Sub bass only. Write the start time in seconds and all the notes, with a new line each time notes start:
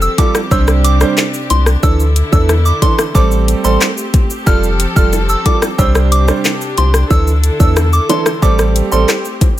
0.51 C2
1.50 C2
1.83 D2
2.33 E2
3.15 A1
3.64 A1
4.47 F1
4.96 F1
5.79 C2
6.78 C2
7.11 D2
7.60 E2
8.42 A1
8.92 A1